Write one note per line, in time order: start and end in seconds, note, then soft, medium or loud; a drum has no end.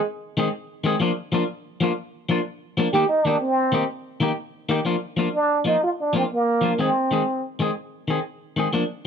0.37 0.47 D#3 medium
0.37 0.47 G#3 medium
0.37 0.48 C4 medium
0.37 0.48 G#4 medium
0.84 0.94 D#3 medium
0.84 0.95 G#3 medium
0.84 0.95 C4 medium
0.84 0.96 G#4 medium
1.00 1.10 F3 loud
1.00 1.11 A#3 medium
1.00 1.11 D4 loud
1.00 1.11 F4 medium
1.32 1.42 F3 medium
1.32 1.43 A#3 medium
1.32 1.43 D4 medium
1.32 1.44 F4 medium
1.81 1.91 F3 medium
1.81 1.91 A#3 medium
1.81 1.92 D4 medium
1.81 1.92 F4 medium
2.29 2.39 F3 medium
2.29 2.39 A#3 medium
2.29 2.40 D4 medium
2.29 2.40 F4 medium
2.77 2.87 F3 medium
2.77 2.87 A#3 medium
2.77 2.88 D4 medium
2.77 muted clean electric guitar stroke medium
2.93 3.03 D#3 medium
2.93 3.03 A#3 medium
2.93 3.04 D#4 medium
2.93 3.08 G4 medium
2.93 3.04 G4 medium
3.09 3.27 D#4 loud
3.25 3.35 D#3 medium
3.25 3.35 A#3 medium
3.25 3.40 D4 medium
3.25 3.36 D#4 medium
3.25 3.36 G4 medium
3.41 3.86 C4 loud
3.72 3.82 D#3 medium
3.72 3.83 A#3 medium
3.72 3.83 D#4 medium
3.72 3.84 G4 medium
4.20 4.31 D#3 medium
4.20 4.31 A#3 medium
4.20 4.31 D#4 medium
4.20 4.32 G4 medium
4.69 4.79 D#3 medium
4.69 4.79 A#3 medium
4.69 4.80 D#4 medium
4.69 4.80 G4 medium
4.85 4.95 F3 medium
4.85 4.95 A#3 medium
4.85 4.95 D4 medium
4.85 4.96 F4 medium
5.17 5.27 F3 medium
5.17 5.28 A#3 medium
5.17 5.28 D4 medium
5.17 5.28 F4 medium
5.35 5.64 D4 loud
5.65 5.75 F3 medium
5.65 5.76 A#3 medium
5.65 5.82 D#4 medium
5.65 5.76 F4 medium
5.84 5.91 F4 medium
6.01 6.15 D4 medium
6.13 6.24 F3 medium
6.13 6.24 A#3 medium
6.13 6.24 C4 medium
6.13 6.25 D4 medium
6.13 6.25 F4 medium
6.32 6.82 A#3 medium
6.61 6.72 F3 medium
6.61 6.73 A#3 medium
6.61 6.73 D4 medium
6.61 6.73 F4 medium
6.79 6.89 D#3 medium
6.79 6.89 G#3 medium
6.79 6.89 C4 medium
6.79 7.44 C4 medium
6.79 6.90 G#4 medium
7.11 7.21 D#3 medium
7.11 7.22 G#3 medium
7.11 7.22 C4 medium
7.11 7.22 G#4 medium
7.59 7.69 D#3 medium
7.59 7.70 G#3 medium
7.59 7.70 C4 medium
7.59 7.71 G#4 medium
8.08 8.18 D#3 medium
8.08 8.19 C4 medium
8.08 8.19 G#4 medium
8.56 8.67 D#3 medium
8.56 8.67 G#3 medium
8.56 8.67 C4 medium
8.56 8.68 G#4 medium
8.73 8.83 F3 medium
8.73 8.83 A#3 medium
8.73 8.83 D4 medium
8.73 muted clean electric guitar stroke medium